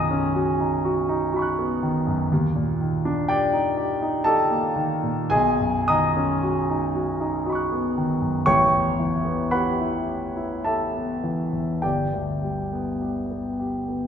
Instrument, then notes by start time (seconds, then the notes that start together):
grand piano
Already playing: B1 F#2 D#3 G#4 D#5 G#5 A#5 D#6
0.11 C#4
0.35 F#4
0.60 D#4
0.85 F#4
1.09 D#4
1.33 F#4 D#5 B5
1.39 C#6 F#6
1.58 B3
1.83 D#3
2.07 F#2
2.32 D#2
2.55 A#2
2.81 D#3
3.05 D4
3.28 G4 D5 G5
3.53 D#4
3.77 G4
4.02 D#4
4.24 G4 A4 D#5 A5
4.51 A#3
4.76 D#3
5.03 A#2
5.30 B1 G#4 D#5 G#5
5.60 F#2
5.88 D#3 D#5 A#5 D#6
6.17 C#4
6.43 F#4
6.70 D#4
6.95 F#4
7.21 D#4
7.46 F#4 D#5 B5
7.52 C#6 F#6
7.72 B3
7.97 D#3
8.21 F#2
8.46 A1 C#5 G5 C#6
8.72 E2
8.99 E3
9.25 B3
9.51 G4 B4 F#5 B5
9.81 E4
10.08 G4
10.37 E4
10.64 G4 A4 E5 A5
10.94 B3
11.23 E3
11.53 E2
11.82 G1 G4 D5 G5
12.13 D2
12.43 G3
12.73 B3
13.01 G4
13.31 B3
13.60 G4
13.88 B3